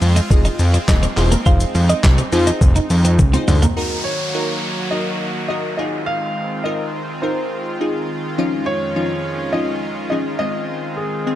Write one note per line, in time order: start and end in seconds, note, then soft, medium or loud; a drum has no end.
0.00 0.20 F2 loud
0.00 3.73 G#3 medium
0.00 3.73 C4 medium
0.00 1.15 F4 medium
0.00 muted clean electric guitar stroke medium
0.00 open hi-hat medium
0.00 shaker soft
0.16 0.25 D#4 medium
0.16 closed hi-hat medium
0.16 shaker medium
0.30 0.49 F1 loud
0.30 0.66 D#4 loud
0.30 0.66 F4 medium
0.30 0.67 G#4 medium
0.30 0.67 D#5 loud
0.30 kick loud
0.30 shaker medium
0.45 0.54 D#4 medium
0.45 closed hi-hat medium
0.45 shaker medium
0.59 0.78 F2 loud
0.59 muted clean electric guitar stroke soft
0.59 open hi-hat medium
0.59 shaker medium
0.74 0.83 C4 medium
0.74 closed hi-hat medium
0.74 shaker medium
0.88 1.07 D#1 loud
0.88 1.06 D#4 medium
0.88 1.06 F4 medium
0.88 1.06 G#4 medium
0.88 1.29 D#5 medium
0.88 1.06 D#5 medium
0.88 kick loud
0.88 snare medium
0.88 clap loud
0.88 shaker medium
1.03 1.11 C4 medium
1.03 closed hi-hat medium
1.03 shaker medium
1.17 1.36 E1 loud
1.17 1.35 D#4 medium
1.17 3.74 D#4 loud
1.17 1.35 F4 medium
1.17 1.35 G#4 medium
1.17 1.35 C5 medium
1.17 muted clean electric guitar stroke soft
1.17 clap medium
1.17 open hi-hat medium
1.17 shaker soft
1.32 1.40 A#3 medium
1.32 closed hi-hat medium
1.32 shaker medium
1.46 1.65 F1 loud
1.46 1.99 D#4 medium
1.46 2.00 F4 medium
1.46 1.55 F4 medium
1.46 2.00 G#4 medium
1.46 2.00 C5 medium
1.46 1.57 F5 loud
1.46 kick loud
1.46 shaker medium
1.60 closed hi-hat medium
1.60 shaker medium
1.75 1.94 F2 medium
1.75 muted clean electric guitar stroke soft
1.75 open hi-hat medium
1.75 shaker medium
1.89 1.98 C4 medium
1.89 2.30 D#5 medium
1.89 closed hi-hat medium
1.89 shaker medium
2.04 2.22 C2 loud
2.04 kick loud
2.04 snare loud
2.04 clap loud
2.04 shaker medium
2.18 2.27 C4 medium
2.18 closed hi-hat medium
2.18 shaker medium
2.32 2.51 F2 loud
2.32 2.95 D#4 medium
2.32 2.95 F4 medium
2.32 2.95 G#4 medium
2.32 2.95 C5 loud
2.32 muted clean electric guitar stroke soft
2.32 open hi-hat medium
2.32 shaker medium
2.47 2.56 D#4 medium
2.47 closed hi-hat medium
2.47 shaker medium
2.61 2.80 F1 loud
2.61 kick loud
2.61 shaker medium
2.76 2.85 D#4 medium
2.76 closed hi-hat medium
2.76 shaker medium
2.90 3.21 F2 loud
2.90 muted clean electric guitar stroke soft
2.90 open hi-hat medium
2.90 shaker medium
3.05 3.13 C4 medium
3.05 closed hi-hat medium
3.05 shaker medium
3.19 3.38 C#2 loud
3.19 kick loud
3.19 high tom medium
3.19 shaker medium
3.33 3.42 C4 medium
3.33 3.60 D#4 loud
3.33 3.60 F4 medium
3.33 3.60 G#4 medium
3.33 3.60 C5 loud
3.33 closed hi-hat medium
3.33 shaker medium
3.48 3.67 D2 loud
3.48 muted clean electric guitar stroke soft
3.48 mid tom loud
3.48 open hi-hat medium
3.48 shaker soft
3.62 3.71 A#3 medium
3.62 closed hi-hat medium
3.62 floor tom loud
3.62 shaker medium
3.77 11.35 D#3 medium
3.77 5.77 F#3 medium
3.77 5.77 A#3 medium
3.77 4.12 D#4 loud
3.77 4.13 F#4 medium
3.77 5.77 F#4 medium
3.77 4.13 A#4 loud
3.77 downlifter medium
4.04 4.94 C#5 medium
4.34 4.70 D#4 medium
4.34 4.70 F#4 medium
4.34 4.70 A#4 medium
4.91 5.28 D#4 medium
4.91 5.28 F#4 medium
4.91 5.28 A#4 medium
4.91 5.47 D#5 medium
5.48 5.77 D#4 medium
5.48 5.79 F#4 medium
5.48 5.79 A#4 medium
5.48 5.76 D#5 medium
5.77 11.35 G#3 medium
5.77 8.36 C4 medium
5.77 6.48 D#4 medium
5.77 11.35 F4 medium
5.77 6.48 F4 medium
5.77 6.48 G#4 medium
5.77 6.08 D#5 medium
6.06 6.66 F5 loud
6.64 7.01 D#4 medium
6.64 7.01 F4 medium
6.64 7.01 A#4 medium
6.64 7.18 D#5 medium
7.22 7.59 D#4 medium
7.22 7.59 F4 medium
7.22 7.59 A#4 medium
7.22 7.76 C5 medium
7.80 8.16 D#4 medium
7.80 8.16 F4 medium
7.80 8.17 G#4 medium
8.38 10.38 F2 medium
8.38 8.74 F3 loud
8.38 8.74 C#4 medium
8.38 10.38 C#4 medium
8.38 8.74 D#4 medium
8.38 8.74 F4 loud
8.66 9.56 C#5 loud
8.96 9.32 F3 medium
8.96 9.32 C#4 medium
8.96 9.32 D#4 medium
8.96 9.32 F4 medium
9.53 9.89 F3 medium
9.53 9.89 C#4 medium
9.53 9.90 D#4 medium
9.53 9.90 F4 medium
9.53 10.08 D#5 loud
10.10 10.40 F3 medium
10.10 10.40 C#4 medium
10.10 10.40 D#4 medium
10.10 10.40 G#4 medium
10.10 10.17 D#5 medium
10.39 11.09 G#3 medium
10.39 11.10 C4 medium
10.39 11.35 C4 medium
10.39 11.10 F4 medium
10.39 10.93 D#5 loud
10.96 11.35 G#4 medium
11.27 11.35 G#3 medium
11.27 11.35 C4 medium
11.27 11.35 G#4 medium